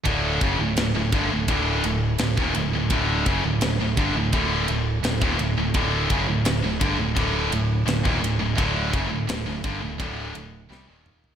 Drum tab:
RD |x-x-x-x-x-x-x-x-|x-x-x-x-x-x-x-x-|x-x-x-x-x-x-x-x-|x-x-x-x-x-x-----|
SD |----o-------o---|----o-------o---|----o-------o---|----o-------o---|
T2 |----------------|----------------|----------------|--------------o-|
FT |----------------|----------------|----------------|---------------o|
BD |o-o---o-o----o--|o-o---o-o----o--|o-o---o-o----o--|o-o---o-o-------|